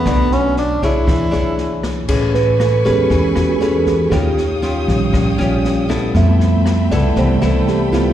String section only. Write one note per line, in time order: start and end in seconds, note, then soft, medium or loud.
2.08 4.09 B4 medium
2.08 4.09 G#5 medium
2.08 4.10 B5 medium
2.08 4.09 C#6 medium
4.11 6.12 C#5 medium
4.11 6.12 F5 medium
4.11 6.12 G5 medium
4.11 6.12 D#6 medium
6.16 8.13 A3 medium
6.16 8.13 E5 medium
6.16 8.13 G5 medium
6.16 8.13 B5 medium